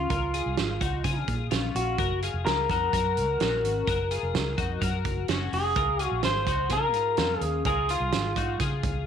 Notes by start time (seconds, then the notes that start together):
Already playing: F4
0.10 C#2 F4 A#4, kick, closed hi-hat
0.34 F4 G#4, closed hi-hat
0.46 C2
0.57 G#1, snare, closed hi-hat
0.81 C#2 D#4 F#4, kick, closed hi-hat
1.04 C#3 F4 G#4, kick, closed hi-hat
1.28 A#2, kick, closed hi-hat
1.51 A#1 C#4 F4, snare, closed hi-hat
1.75 A#1 F#4, closed hi-hat
1.98 F#1 F#4 A#4, kick, closed hi-hat
2.22 F4 G#4, closed hi-hat
2.34 F1
2.46 C#2 A#4, snare, closed hi-hat
2.70 F2 D#4 F#4 A#4, kick, closed hi-hat
2.93 F#2 F#4 A#4, kick, closed hi-hat
3.17 C#2, closed hi-hat
3.40 A#1 C#4 F#4, snare, closed hi-hat
3.63 G#1, closed hi-hat
3.87 F#1 F#4 A#4, kick, closed hi-hat
4.11 F4 G#4, closed hi-hat
4.23 F1
4.34 C#2, snare, closed hi-hat
4.58 F2 D#4 F#4, kick, closed hi-hat
4.81 F#2 F#4 A#4, kick, closed hi-hat
5.05 F#1, kick, closed hi-hat
5.28 F#1 C#4 F#4, snare, closed hi-hat
5.53 F1 G#4, open hi-hat
5.76 C#2 F4 A#4, kick, closed hi-hat
5.99 F4 G#4, closed hi-hat
6.04 F#4
6.11 A#1
6.23 G#1 C5, snare, closed hi-hat
6.47 C#2 D#4 F#4, kick, closed hi-hat
6.69 C#3 F4 G#4 A#4, kick, snare, closed hi-hat
6.93 G#2, closed hi-hat
7.17 F2 C#4 F4, snare, closed hi-hat
7.41 D#2 G#4, closed hi-hat
7.65 C#2 F4 G#4 A#4, kick, closed hi-hat
7.89 F4 G#4, closed hi-hat
8.00 C2
8.12 G#1, snare, closed hi-hat
8.36 G#2 D#4 F#4, kick, closed hi-hat
8.59 C#3 F4 G#4, kick, snare, closed hi-hat
8.83 C#2, kick, closed hi-hat